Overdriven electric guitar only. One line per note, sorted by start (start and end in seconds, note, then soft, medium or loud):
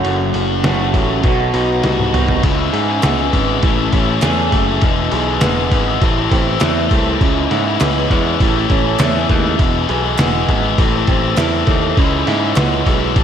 0.04 1.24 F#2 medium
0.34 1.24 F#4 medium
0.65 1.24 A3 medium
0.95 1.24 F#3 medium
1.24 2.42 B2 medium
1.54 2.12 D#4 medium
1.84 2.44 F#4 medium
2.13 2.44 D#4 medium
2.42 3.03 C#3 medium
2.42 2.72 E3 medium
2.42 2.72 G#3 medium
2.42 2.73 C#4 medium
2.42 2.74 E4 loud
2.72 3.31 E3 medium
2.72 2.88 G#3 medium
2.72 2.87 C#4 medium
2.72 2.87 E4 medium
2.87 3.31 G#3 medium
2.87 3.32 C#4 medium
2.87 3.33 E4 medium
3.31 3.62 E3 medium
3.31 3.48 G#3 medium
3.31 3.47 C#4 medium
3.31 3.46 E4 medium
3.46 3.62 G#3 medium
3.46 3.61 C#4 medium
3.46 3.63 E4 medium
3.61 4.07 A2 medium
3.61 3.91 E3 medium
3.61 3.78 A3 medium
3.61 3.77 C#4 loud
3.61 3.76 E4 loud
3.77 3.91 A3 medium
3.77 3.92 C#4 medium
3.77 3.93 E4 medium
3.91 4.21 E3 medium
3.91 4.08 A3 medium
3.91 4.06 C#4 medium
3.91 4.06 E4 medium
4.06 4.21 A3 medium
4.06 4.22 C#4 medium
4.06 4.23 E4 medium
4.21 4.80 A2 medium
4.21 4.51 E3 medium
4.21 4.52 A3 loud
4.21 4.52 C#4 medium
4.21 4.54 E4 loud
4.52 4.82 E3 medium
4.52 4.69 A3 medium
4.52 4.68 C#4 medium
4.52 4.67 E4 medium
4.67 4.82 A3 medium
4.67 4.81 C#4 medium
4.67 4.84 E4 medium
4.82 5.42 E2 medium
4.82 5.42 B2 medium
4.82 5.11 E3 medium
4.82 5.12 G#3 medium
4.82 5.13 B3 medium
4.82 5.14 E4 loud
5.12 5.29 E3 medium
5.12 5.27 G#3 medium
5.12 5.26 B3 medium
5.12 5.26 E4 medium
5.27 5.71 E3 medium
5.27 5.71 G#3 medium
5.27 5.72 B3 medium
5.27 5.74 E4 medium
5.71 5.88 E3 medium
5.71 5.87 G#3 medium
5.71 5.86 B3 medium
5.71 5.86 E4 medium
5.86 6.02 E3 medium
5.86 6.01 G#3 medium
5.86 6.00 B3 medium
5.86 6.03 E4 medium
6.01 6.46 A2 medium
6.01 6.31 E3 medium
6.01 6.18 A3 loud
6.01 6.17 C4 loud
6.01 6.16 E4 loud
6.17 6.32 A3 medium
6.17 6.32 C4 medium
6.17 6.34 E4 medium
6.32 6.62 E3 medium
6.32 6.49 A3 medium
6.32 6.47 C4 medium
6.32 6.47 E4 medium
6.47 6.62 A3 medium
6.47 6.62 C4 medium
6.47 6.64 E4 medium
6.62 7.19 A2 loud
6.62 6.91 E3 loud
6.62 6.91 A3 loud
6.62 6.92 C4 loud
6.62 6.94 E4 loud
6.91 7.20 E3 medium
6.91 7.08 A3 medium
6.91 7.06 C4 medium
6.91 7.06 E4 medium
7.06 7.21 A3 medium
7.06 7.20 C4 medium
7.06 7.23 E4 medium
7.20 7.80 C#3 medium
7.20 7.50 E3 loud
7.20 7.50 G#3 loud
7.20 7.51 C#4 loud
7.20 7.52 E4 loud
7.50 8.10 E3 medium
7.50 7.66 G#3 medium
7.50 7.65 C#4 medium
7.50 7.65 E4 medium
7.65 8.10 G#3 medium
7.65 8.10 C#4 medium
7.65 8.12 E4 medium
8.10 8.40 E3 medium
8.10 8.26 G#3 medium
8.10 8.25 C#4 medium
8.10 8.24 E4 medium
8.24 8.39 G#3 medium
8.24 8.39 C#4 medium
8.24 8.42 E4 medium
8.39 8.84 A2 medium
8.39 8.70 E3 medium
8.39 8.56 A3 medium
8.39 8.55 C#4 loud
8.39 8.54 E4 loud
8.55 8.70 A3 medium
8.55 8.71 C#4 medium
8.55 8.72 E4 medium
8.70 9.00 E3 medium
8.70 8.85 A3 medium
8.70 8.84 C#4 medium
8.70 8.84 E4 medium
8.84 8.99 A3 medium
8.84 9.00 C#4 medium
8.84 9.01 E4 medium
8.99 9.57 A2 medium
8.99 9.28 E3 medium
8.99 9.28 A3 medium
8.99 9.29 C#4 loud
8.99 9.30 E4 loud
9.28 9.58 E3 medium
9.28 9.45 A3 medium
9.28 9.44 C#4 medium
9.28 9.43 E4 medium
9.44 9.58 A3 medium
9.44 9.58 C#4 medium
9.44 9.60 E4 medium
9.58 10.18 E2 loud
9.58 10.18 B2 medium
9.58 9.88 E3 medium
9.58 9.87 G#3 medium
9.58 9.88 B3 medium
9.58 9.90 E4 loud
9.88 10.04 E3 medium
9.88 10.02 G#3 medium
9.88 10.02 B3 medium
9.88 10.01 E4 medium
10.02 10.47 E3 medium
10.02 10.47 G#3 medium
10.02 10.48 B3 medium
10.02 10.49 E4 medium
10.47 10.64 E3 medium
10.47 10.63 G#3 medium
10.47 10.61 B3 medium
10.47 10.61 E4 medium
10.62 10.77 E3 medium
10.62 10.77 G#3 medium
10.62 10.76 B3 medium
10.62 10.79 E4 medium
10.77 11.22 A2 loud
10.77 11.06 E3 medium
10.77 10.94 A3 medium
10.77 10.92 C4 loud
10.77 10.92 E4 loud
10.92 11.06 A3 medium
10.92 11.07 C4 medium
10.92 11.09 E4 medium
11.07 11.36 E3 medium
11.07 11.23 A3 medium
11.07 11.22 C4 medium
11.07 11.21 E4 medium
11.22 11.36 A3 medium
11.22 11.37 C4 medium
11.22 11.38 E4 medium
11.36 11.95 A2 medium
11.36 11.65 E3 loud
11.36 11.66 A3 loud
11.36 11.66 C4 loud
11.36 11.68 E4 medium
11.66 11.96 E3 medium
11.66 11.82 A3 medium
11.66 11.81 C4 medium
11.66 11.81 E4 medium
11.81 11.96 A3 medium
11.81 11.95 C4 medium
11.81 11.97 E4 medium
11.95 12.56 C#3 medium
11.95 12.24 E3 loud
11.95 12.24 G#3 loud
11.95 12.25 C#4 medium
11.95 12.26 E4 medium
12.24 12.84 E3 medium
12.24 12.41 G#3 medium
12.24 12.40 C#4 medium
12.24 12.39 E4 medium
12.40 12.85 G#3 medium
12.40 12.86 C#4 medium
12.40 12.87 E4 medium
12.85 13.15 E3 medium
12.85 13.01 G#3 medium
12.85 13.00 C#4 medium
12.85 12.99 E4 medium
12.99 13.15 G#3 medium
12.99 13.14 C#4 medium
12.99 13.16 E4 medium
13.14 13.24 A2 medium
13.14 13.24 E3 medium
13.14 13.24 A3 medium
13.14 13.24 C#4 medium
13.14 13.24 E4 medium